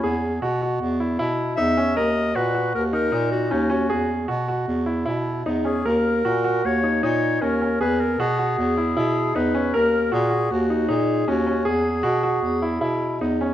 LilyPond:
<<
  \new Staff \with { instrumentName = "Clarinet" } { \time 5/4 \key fes \lydian \tempo 4 = 155 fes'8 r2. r8 e''4 | ees''4 ces''4 bes'8 bes'4 ges'8 ees'8 ges'8~ | ges'8 r1 gis'8 | bes'2 des''4 des''4 bes'4 |
b'8 bes'8 gis'2. b'4 | bes'4 aes'4 ges'4 aes'4 ges'4 | gis'1 r4 | }
  \new Staff \with { instrumentName = "Grand piano" } { \time 5/4 \key fes \lydian gis'4 fis'8 fis'4 e'8 e'4 ees'8 des'8 | bes'4 ges'8 ges'4 ees'8 ees'4 des'8 des'8 | gis'4 fis'8 fis'4 e'8 e'4 ees'8 des'8 | bes'4 ges'8 ges'4 ees'8 ees'4 des'8 des'8 |
gis'4 fis'8 fis'4 e'8 e'4 ees'8 des'8 | bes'4 ges'8 ges'4 ees'8 ees'4 des'8 des'8 | gis'4 fis'8 fis'4 e'8 e'4 ees'8 des'8 | }
  \new Staff \with { instrumentName = "Bass clarinet" } { \clef bass \time 5/4 \key fes \lydian e,4 b,4 e,4 b,4 e,4 | ees,4 bes,4 ees,4 bes,4 ees,4 | e,4 b,4 e,4 b,4 e,4 | ees,4 bes,4 ees,4 bes,4 ees,4 |
e,4 b,4 e,4 b,4 e,4 | ees,4 bes,4 ees,4 bes,4 ees,4 | e,4 b,4 e,4 b,4 e,4 | }
>>